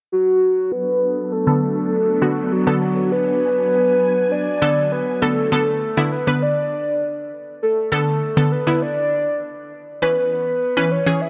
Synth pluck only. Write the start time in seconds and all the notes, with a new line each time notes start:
1.47 D3 B3 A4
2.22 D3 B3 F#4
2.67 D3 B3 A4
4.62 D3 B3 A4
5.22 D3 B3 A4
5.52 D3 B3 A4
5.97 D3 B3 E4
6.27 D3 B3 B4
7.92 D3 B3 A4
8.37 D3 B3 A4
8.67 D3 B3 E4
10.02 E3 C#4 B4
10.77 E3 C#4 B4
11.06 E3 C#4 G#4